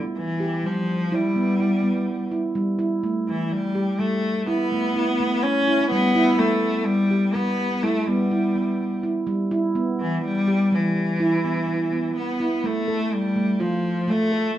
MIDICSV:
0, 0, Header, 1, 3, 480
1, 0, Start_track
1, 0, Tempo, 480384
1, 2552, Time_signature, 7, 2, 24, 8
1, 14572, End_track
2, 0, Start_track
2, 0, Title_t, "Handpan"
2, 0, Program_c, 0, 114
2, 400, Note_on_c, 0, 67, 57
2, 585, Note_off_c, 0, 67, 0
2, 638, Note_on_c, 0, 55, 65
2, 1009, Note_off_c, 0, 55, 0
2, 1121, Note_on_c, 0, 64, 64
2, 1304, Note_off_c, 0, 64, 0
2, 1359, Note_on_c, 0, 59, 62
2, 1543, Note_off_c, 0, 59, 0
2, 1595, Note_on_c, 0, 64, 59
2, 1780, Note_off_c, 0, 64, 0
2, 1830, Note_on_c, 0, 59, 63
2, 2202, Note_off_c, 0, 59, 0
2, 2312, Note_on_c, 0, 64, 61
2, 2498, Note_off_c, 0, 64, 0
2, 2551, Note_on_c, 0, 55, 72
2, 2737, Note_off_c, 0, 55, 0
2, 2785, Note_on_c, 0, 64, 66
2, 2973, Note_off_c, 0, 64, 0
2, 3032, Note_on_c, 0, 57, 64
2, 3403, Note_off_c, 0, 57, 0
2, 3746, Note_on_c, 0, 67, 58
2, 3933, Note_off_c, 0, 67, 0
2, 3990, Note_on_c, 0, 55, 68
2, 4361, Note_off_c, 0, 55, 0
2, 4470, Note_on_c, 0, 64, 68
2, 4655, Note_off_c, 0, 64, 0
2, 4716, Note_on_c, 0, 57, 64
2, 4898, Note_off_c, 0, 57, 0
2, 4957, Note_on_c, 0, 64, 65
2, 5139, Note_off_c, 0, 64, 0
2, 5193, Note_on_c, 0, 57, 62
2, 5563, Note_off_c, 0, 57, 0
2, 5670, Note_on_c, 0, 64, 66
2, 5855, Note_off_c, 0, 64, 0
2, 5912, Note_on_c, 0, 55, 77
2, 6096, Note_off_c, 0, 55, 0
2, 6148, Note_on_c, 0, 64, 76
2, 6333, Note_off_c, 0, 64, 0
2, 6388, Note_on_c, 0, 59, 68
2, 6759, Note_off_c, 0, 59, 0
2, 7101, Note_on_c, 0, 67, 62
2, 7289, Note_off_c, 0, 67, 0
2, 7346, Note_on_c, 0, 55, 68
2, 7718, Note_off_c, 0, 55, 0
2, 7827, Note_on_c, 0, 64, 66
2, 8013, Note_off_c, 0, 64, 0
2, 8069, Note_on_c, 0, 59, 69
2, 8254, Note_off_c, 0, 59, 0
2, 8307, Note_on_c, 0, 64, 64
2, 8493, Note_off_c, 0, 64, 0
2, 8545, Note_on_c, 0, 59, 62
2, 8918, Note_off_c, 0, 59, 0
2, 9025, Note_on_c, 0, 64, 56
2, 9212, Note_off_c, 0, 64, 0
2, 9260, Note_on_c, 0, 55, 75
2, 9449, Note_off_c, 0, 55, 0
2, 9505, Note_on_c, 0, 64, 67
2, 9692, Note_off_c, 0, 64, 0
2, 9745, Note_on_c, 0, 59, 67
2, 10119, Note_off_c, 0, 59, 0
2, 10469, Note_on_c, 0, 67, 65
2, 10655, Note_off_c, 0, 67, 0
2, 10714, Note_on_c, 0, 55, 72
2, 11085, Note_off_c, 0, 55, 0
2, 11190, Note_on_c, 0, 64, 71
2, 11376, Note_off_c, 0, 64, 0
2, 11436, Note_on_c, 0, 59, 59
2, 11620, Note_off_c, 0, 59, 0
2, 11675, Note_on_c, 0, 64, 55
2, 11860, Note_off_c, 0, 64, 0
2, 11914, Note_on_c, 0, 59, 60
2, 12285, Note_off_c, 0, 59, 0
2, 12392, Note_on_c, 0, 64, 60
2, 12578, Note_off_c, 0, 64, 0
2, 12629, Note_on_c, 0, 57, 72
2, 12816, Note_off_c, 0, 57, 0
2, 12868, Note_on_c, 0, 69, 64
2, 13243, Note_off_c, 0, 69, 0
2, 13350, Note_on_c, 0, 57, 69
2, 13538, Note_off_c, 0, 57, 0
2, 13591, Note_on_c, 0, 65, 64
2, 13965, Note_off_c, 0, 65, 0
2, 14069, Note_on_c, 0, 57, 66
2, 14257, Note_off_c, 0, 57, 0
2, 14310, Note_on_c, 0, 69, 62
2, 14572, Note_off_c, 0, 69, 0
2, 14572, End_track
3, 0, Start_track
3, 0, Title_t, "Cello"
3, 0, Program_c, 1, 42
3, 173, Note_on_c, 1, 52, 78
3, 654, Note_on_c, 1, 53, 75
3, 669, Note_off_c, 1, 52, 0
3, 1149, Note_on_c, 1, 55, 76
3, 1164, Note_off_c, 1, 53, 0
3, 2329, Note_off_c, 1, 55, 0
3, 3284, Note_on_c, 1, 52, 70
3, 3515, Note_on_c, 1, 55, 83
3, 3530, Note_off_c, 1, 52, 0
3, 3992, Note_on_c, 1, 57, 82
3, 4007, Note_off_c, 1, 55, 0
3, 4469, Note_off_c, 1, 57, 0
3, 4486, Note_on_c, 1, 59, 81
3, 5423, Note_on_c, 1, 61, 90
3, 5438, Note_off_c, 1, 59, 0
3, 5892, Note_off_c, 1, 61, 0
3, 5898, Note_on_c, 1, 59, 94
3, 6384, Note_on_c, 1, 57, 82
3, 6399, Note_off_c, 1, 59, 0
3, 6852, Note_on_c, 1, 55, 81
3, 6867, Note_off_c, 1, 57, 0
3, 7339, Note_on_c, 1, 59, 81
3, 7354, Note_off_c, 1, 55, 0
3, 7823, Note_on_c, 1, 57, 79
3, 7838, Note_off_c, 1, 59, 0
3, 8070, Note_on_c, 1, 55, 72
3, 8085, Note_off_c, 1, 57, 0
3, 9029, Note_off_c, 1, 55, 0
3, 9990, Note_on_c, 1, 52, 69
3, 10212, Note_off_c, 1, 52, 0
3, 10238, Note_on_c, 1, 55, 89
3, 10737, Note_on_c, 1, 52, 78
3, 10751, Note_off_c, 1, 55, 0
3, 12148, Note_off_c, 1, 52, 0
3, 12154, Note_on_c, 1, 59, 71
3, 12647, Note_on_c, 1, 57, 76
3, 12662, Note_off_c, 1, 59, 0
3, 13129, Note_on_c, 1, 55, 77
3, 13144, Note_off_c, 1, 57, 0
3, 13588, Note_on_c, 1, 53, 73
3, 13603, Note_off_c, 1, 55, 0
3, 14089, Note_on_c, 1, 57, 84
3, 14104, Note_off_c, 1, 53, 0
3, 14562, Note_off_c, 1, 57, 0
3, 14572, End_track
0, 0, End_of_file